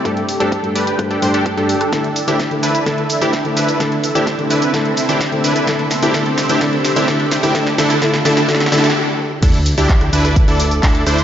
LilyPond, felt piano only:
\new Staff \with { instrumentName = "Felt piano" } { \time 4/4 \key d \dorian \tempo 4 = 128 <g, a d' g' a'>16 r8 <g, a d' g' c''>16 r16 <g, a d' g' a'>8 r16 <g, a d' g' c''>16 r16 <g, a d' g' a'>8. <g, a d' g' a'>16 r8 | <d a d' e' a'>16 r8 <d a d' e' c''>16 r16 <d a d' e' a'>8 r16 <d a d' e' a'>16 r8 <d a d' e' c''>16 r16 <d a d' e' a'>8 r16 | <d a d' e' a'>16 r8 <d a d' e' c''>16 r16 <d a d' e' a'>8 r16 <d a d' e' a'>16 r8 <d a d' e' c''>16 r16 <d a d' e' a'>8 r16 | <d a d' e' a'>16 r8 <d a d' e' c''>16 <d a d' e' a'>16 r8 <d a d' e' c''>16 <d a d' e' a'>16 r8 <d a d' e' c''>16 <d a d' e' a'>16 r8 <d a d' e' c''>16 |
<d a d' e' a'>16 r16 <d a d' e' a'>16 r16 <d a d' e' a'>16 r16 <d a d' e' a'>16 r16 <d a d' e' a'>16 r16 <d a d' e' a'>16 r4 r16 | r1 | }